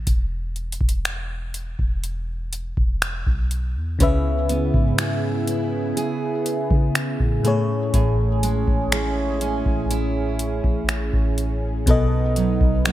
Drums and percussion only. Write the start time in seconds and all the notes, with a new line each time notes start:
0.07 kick, closed hi-hat
0.56 closed hi-hat
0.72 closed hi-hat
0.81 kick
0.89 closed hi-hat
1.05 finger snap, closed hi-hat
1.54 closed hi-hat
1.79 kick
2.04 closed hi-hat
2.53 closed hi-hat
2.77 kick
3.02 finger snap, closed hi-hat
3.27 kick
3.51 closed hi-hat
4.00 kick, closed hi-hat
4.49 closed hi-hat
4.74 kick
4.98 finger snap, closed hi-hat
5.47 closed hi-hat
5.97 closed hi-hat
6.46 closed hi-hat
6.71 kick
6.95 finger snap, closed hi-hat
7.20 kick
7.45 closed hi-hat
7.94 kick, closed hi-hat
8.43 closed hi-hat
8.68 kick
8.92 finger snap, closed hi-hat
9.41 closed hi-hat
9.66 kick
9.91 closed hi-hat
10.39 closed hi-hat
10.64 kick
10.89 finger snap, closed hi-hat
11.13 kick
11.38 closed hi-hat
11.87 kick, closed hi-hat
12.36 closed hi-hat
12.61 kick
12.85 finger snap, closed hi-hat